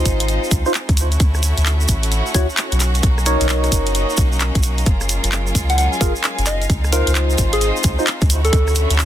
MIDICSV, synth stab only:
0, 0, Header, 1, 2, 480
1, 0, Start_track
1, 0, Key_signature, 6, "major"
1, 0, Tempo, 458015
1, 1258, Time_signature, 4, 2, 24, 8
1, 9485, End_track
2, 0, Start_track
2, 0, Title_t, "Synth stab"
2, 0, Program_c, 0, 62
2, 0, Note_on_c, 0, 63, 79
2, 0, Note_on_c, 0, 65, 74
2, 0, Note_on_c, 0, 72, 88
2, 655, Note_off_c, 0, 63, 0
2, 655, Note_off_c, 0, 65, 0
2, 655, Note_off_c, 0, 72, 0
2, 691, Note_on_c, 0, 63, 86
2, 691, Note_on_c, 0, 65, 81
2, 692, Note_on_c, 0, 72, 97
2, 763, Note_off_c, 0, 63, 0
2, 763, Note_off_c, 0, 65, 0
2, 763, Note_off_c, 0, 72, 0
2, 2457, Note_on_c, 0, 66, 76
2, 2458, Note_on_c, 0, 64, 84
2, 2458, Note_on_c, 0, 73, 93
2, 2585, Note_off_c, 0, 66, 0
2, 2586, Note_off_c, 0, 64, 0
2, 2586, Note_off_c, 0, 73, 0
2, 3417, Note_on_c, 0, 63, 83
2, 3417, Note_on_c, 0, 70, 73
2, 3417, Note_on_c, 0, 73, 91
2, 4494, Note_off_c, 0, 63, 0
2, 4494, Note_off_c, 0, 70, 0
2, 4494, Note_off_c, 0, 73, 0
2, 6296, Note_on_c, 0, 68, 79
2, 6297, Note_on_c, 0, 65, 88
2, 6297, Note_on_c, 0, 70, 93
2, 6425, Note_off_c, 0, 65, 0
2, 6425, Note_off_c, 0, 68, 0
2, 6425, Note_off_c, 0, 70, 0
2, 7258, Note_on_c, 0, 63, 82
2, 7258, Note_on_c, 0, 65, 73
2, 7258, Note_on_c, 0, 72, 89
2, 8335, Note_off_c, 0, 63, 0
2, 8335, Note_off_c, 0, 65, 0
2, 8335, Note_off_c, 0, 72, 0
2, 8371, Note_on_c, 0, 63, 89
2, 8371, Note_on_c, 0, 65, 81
2, 8371, Note_on_c, 0, 72, 96
2, 8443, Note_off_c, 0, 63, 0
2, 8443, Note_off_c, 0, 65, 0
2, 8443, Note_off_c, 0, 72, 0
2, 9485, End_track
0, 0, End_of_file